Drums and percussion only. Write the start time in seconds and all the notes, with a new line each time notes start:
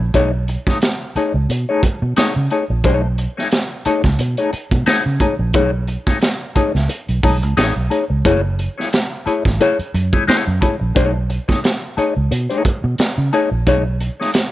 0.14 kick, closed hi-hat
0.48 closed hi-hat
0.67 kick, snare
0.82 snare, closed hi-hat
1.16 closed hi-hat
1.50 closed hi-hat
1.83 kick, closed hi-hat
2.16 snare, closed hi-hat
2.50 closed hi-hat
2.84 kick, closed hi-hat
3.18 closed hi-hat
3.38 snare
3.52 snare, closed hi-hat
3.85 closed hi-hat
4.04 kick, snare
4.19 closed hi-hat
4.37 closed hi-hat
4.53 closed hi-hat
4.71 kick, closed hi-hat
4.86 snare, closed hi-hat
5.20 kick, closed hi-hat
5.54 kick, closed hi-hat
5.88 closed hi-hat
6.07 kick, snare
6.22 snare, closed hi-hat
6.56 kick, closed hi-hat
6.75 snare
6.89 closed hi-hat
7.09 closed hi-hat
7.23 kick, open hi-hat
7.43 closed hi-hat
7.57 snare, closed hi-hat
7.91 closed hi-hat
8.25 kick, closed hi-hat
8.59 closed hi-hat
8.80 snare
8.93 snare, closed hi-hat
9.27 closed hi-hat
9.45 kick, snare
9.61 closed hi-hat
9.80 closed hi-hat
9.95 closed hi-hat
10.13 kick
10.28 snare, closed hi-hat
10.62 kick, closed hi-hat
10.96 kick, closed hi-hat
11.30 closed hi-hat
11.49 kick, snare
11.64 snare, closed hi-hat
11.98 closed hi-hat
12.32 closed hi-hat
12.50 closed hi-hat
12.65 kick, closed hi-hat
12.98 snare, closed hi-hat
13.33 closed hi-hat
13.67 kick, closed hi-hat
14.00 closed hi-hat
14.21 snare
14.34 snare, closed hi-hat